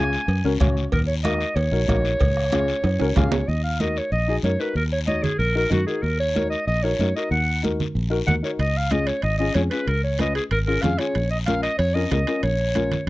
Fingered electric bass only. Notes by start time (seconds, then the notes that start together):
Already playing: C#2
0.28 F#2
0.44 C#2
0.60 C#2
0.92 D#2
1.56 D#2
1.72 A#1
1.89 A#1
2.21 C#2
2.84 F#2
3.01 C#2
3.17 C#2
3.48 D#2
4.12 A#1
4.43 F#2
4.75 D#2
5.39 A#1
5.71 F#2
6.03 D#2
6.67 A#1
6.99 F#2
7.31 D#2
7.95 A#1
8.27 D#2
8.59 C#2
9.23 G#1
9.55 F2
9.87 C#2
10.51 G#1
10.83 F2
11.15 A#1
11.79 F2
12.11 C#2
12.43 A#1